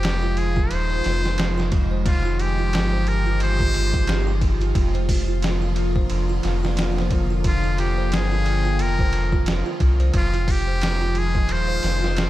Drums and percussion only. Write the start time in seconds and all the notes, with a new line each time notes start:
0.03 snare, ride
0.37 ride
0.57 kick
0.71 ride
1.04 snare, ride
1.25 snare
1.38 snare, ride
1.60 snare
1.72 kick, ride
2.06 kick, ride
2.39 ride
2.73 snare, ride
3.07 ride
3.40 ride
3.60 kick
3.74 ride
3.94 kick
4.07 snare, ride
4.41 kick, ride
4.61 ride
4.75 kick, ride
4.95 ride
5.09 kick, open hi-hat
5.42 snare, ride
5.76 ride
5.96 kick
6.10 ride
6.43 snare, ride
6.65 snare
6.77 snare, ride
6.98 snare
7.11 kick, ride
7.44 kick, ride
7.78 ride
8.12 snare, ride
8.46 ride
8.79 ride
8.99 kick
9.13 ride
9.32 kick
9.46 snare, ride
9.80 kick, ride
10.00 ride
10.14 kick, ride
10.34 ride
10.48 kick, open hi-hat
10.81 snare, ride
11.15 ride
11.35 kick
11.49 ride
11.83 snare, ride
12.04 snare
12.17 snare, ride